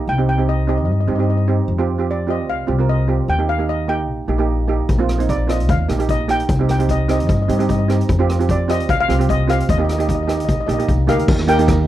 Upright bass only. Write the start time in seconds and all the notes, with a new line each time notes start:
0.07 C2
0.88 G2
1.07 G2
1.68 F2
2.48 C2
2.68 C2
3.28 D#2
4.08 A#1
4.28 A#1
4.89 A#1
5.69 D#2
5.89 A#1
6.49 C2
7.29 G2
7.49 G2
8.09 F2
8.89 C2
9.09 C2
9.69 D#2
10.49 A#1
10.69 A#1
10.89 C2
11.08 D2
11.28 D#2